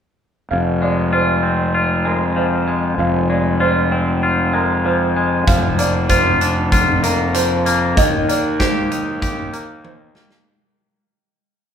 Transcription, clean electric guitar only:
0.51 F2
0.82 G#3
1.13 F4
1.43 C4
1.74 F4
2.05 G#3
2.36 F3
2.68 G#3
2.98 F2
3.30 G#3
3.60 F4
3.92 C4
4.23 F4
4.53 G#3
4.85 F3
5.17 G#3
5.48 F3
5.78 A#3
6.10 F4
6.41 D4
6.72 F4
7.03 A#3
7.35 F3
7.66 A#3
7.98 D#3
8.29 A#3
8.60 G4
8.91 D#4
9.22 G4
9.53 A#3
9.84 D#3
10.15 A#3

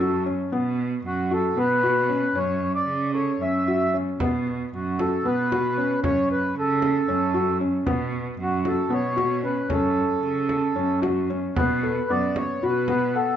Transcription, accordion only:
Already playing: A4
1.06 F#4
1.33 A4
1.59 B4
2.37 C#5
2.75 D5
3.15 C#5
3.42 E5
4.74 F#4
5.00 A4
5.26 B4
6.05 C#5
6.32 B4
6.59 A4
8.42 F#4
8.67 A4
8.94 C#5
9.45 B4
9.72 A4
11.57 B4
12.10 D5
12.37 C#5
12.63 B4
13.16 A4

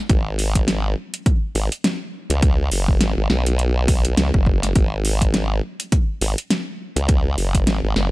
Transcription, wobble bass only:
0.10 G#1
1.55 G#1
2.30 C#2
2.71 F#1
3.01 G#1
3.17 G#1
3.30 B1
4.17 C#2
4.34 F#1
4.76 G#1
6.21 G#1
6.96 C#2
7.38 F#1
7.67 G#1
7.84 G#1
7.96 F#1

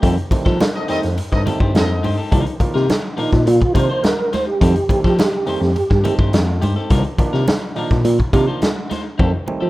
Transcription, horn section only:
0.75 C4 D#4 A4 D#5
0.89 C4 D#4 A4 D#5
1.32 C4 D#4 A4 D#5
1.75 C4 D#4 A4 D#5

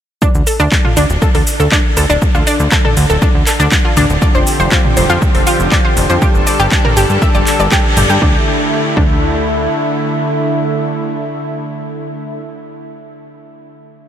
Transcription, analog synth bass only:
0.35 D2
0.60 D2
0.97 D2
1.10 D1
1.35 D2
1.60 D2
1.97 D2
2.10 D1
2.35 D2
2.60 D2
2.97 D2
3.10 D1
3.35 D2
3.60 D2
3.97 D2
4.10 D1
4.35 F1
4.60 F1
4.97 F1
5.10 F2
5.35 F1
5.60 F1
5.97 F1
6.10 F2
6.35 G1
6.60 G1
6.97 G1
7.10 G2
7.35 G1
7.60 G1
7.97 G1
8.10 G2
8.22 D2
8.97 D2

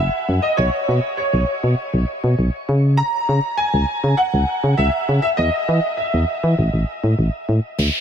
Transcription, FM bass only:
0.29 F#2
0.58 B1
0.88 B2
1.33 B1
1.64 B2
1.94 B1
2.24 B2
2.39 B1
2.69 C#3
3.29 C#3
3.74 C#2
4.04 C#3
4.34 C#2
4.64 C#3
4.78 C#2
5.09 C#3
5.39 E2
5.68 E3
6.14 E2
6.43 E3
6.59 A1
6.73 A1
7.04 A2
7.19 A1
7.49 A2
7.79 D2

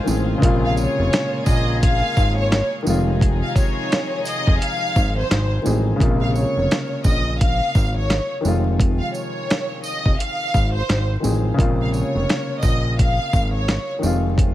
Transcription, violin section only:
0.65 F5
0.78 C#5
1.46 D#5
1.83 F5
2.37 C#5
3.43 F5
3.57 C#5
4.26 D#5
4.61 F5
5.18 C5
6.21 F5
6.36 C#5
7.05 D#5
7.40 F5
7.97 C#5
8.99 F5
9.15 C#5
9.85 D#5
10.20 F5
10.73 C5
11.81 F5
11.95 C#5
12.62 D#5
13.00 F5
13.54 C#5

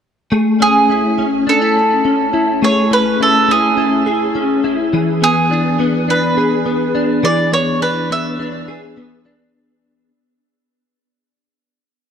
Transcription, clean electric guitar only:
0.32 A3 G#4
0.60 C#4
0.89 E4
1.18 C#4
1.47 D4
1.61 E4
2.05 C#4
2.33 E4
2.62 A3 G#4
2.91 C#4
3.20 E4
3.48 C#4
3.77 E4
4.06 G#4
4.35 C#4
4.64 E4
4.93 E3 G#4
5.22 B3
5.51 D4
5.79 B3
6.08 D4
6.37 G#4
6.66 B3
6.95 D4
7.23 E3 G#4
7.52 B3
7.82 D4
8.10 B3
8.39 D4
8.68 G#4
8.97 B3
9.25 D4

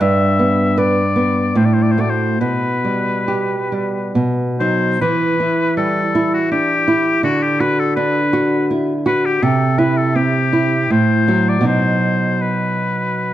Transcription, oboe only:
0.01 E5
0.79 D5
1.57 C5
1.65 D5
1.73 C5
1.82 D5
1.92 C5
2.00 D5
2.10 C5
2.40 B4
4.60 C5
5.01 B4
5.77 A4
6.34 F#4
6.52 G4
7.24 F#4
7.43 G4
7.60 B4
7.79 A4
7.96 B4
9.07 B4
9.25 G4
9.43 A4
9.78 B4
9.97 A4
10.16 G4
10.91 C5
11.49 D5
11.67 C5
12.41 B4

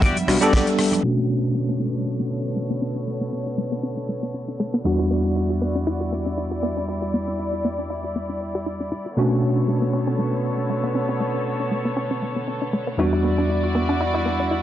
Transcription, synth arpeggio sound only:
1.04 A3
1.18 B3
1.29 C#4
1.55 A3
1.69 B3
1.80 C#4
1.94 D4
2.06 A3
2.20 B3
2.31 C#4
2.45 D4
2.56 A3
2.70 B3
2.82 C#4
2.96 D4
3.07 A3
3.21 B3
3.33 C#4
3.47 D4
3.58 A3
3.72 B3
3.83 C#4
3.97 D4
4.09 A3
4.23 B3
4.34 C#4
4.48 D4
4.60 A3
4.74 B3
4.85 E4
4.99 F#4
5.11 B3
5.25 D4
5.36 E4
5.50 F#4
5.62 B3
5.75 D4
5.87 E4
6.01 F#4
6.12 B3
6.26 D4
6.38 E4
6.51 F#4
6.63 B3
6.77 D4
6.88 E4
7.02 F#4
7.14 B3
7.28 D4
7.39 E4
7.53 F#4
7.65 B3
7.79 D4
7.90 E4
8.04 F#4
8.16 B3
8.30 D4
8.41 D5
8.55 G4
8.66 E4
8.80 D4
8.92 E4
9.06 F#4
9.17 A3
9.31 B3
9.43 C#4
9.57 D4
9.68 A3
9.82 B3
9.93 C#4
10.07 C#4
10.19 A3
10.33 B3
10.44 C#4
10.58 D4
10.70 A3
10.84 B3
10.95 C#4
11.09 C#4
11.20 A3
11.35 B3
11.46 C#4
11.60 D4
11.71 A3
11.85 B3
11.97 C#4
12.11 C#4
12.22 A3
12.36 B3
12.48 C#4
12.62 D4
12.73 A3
12.87 B3
12.99 E4
13.13 E4
13.24 B3
13.38 D4
13.50 E4
13.64 F#4
13.75 B3
13.89 D4
14.01 E4
14.14 E4
14.26 B3
14.40 D4
14.51 E4

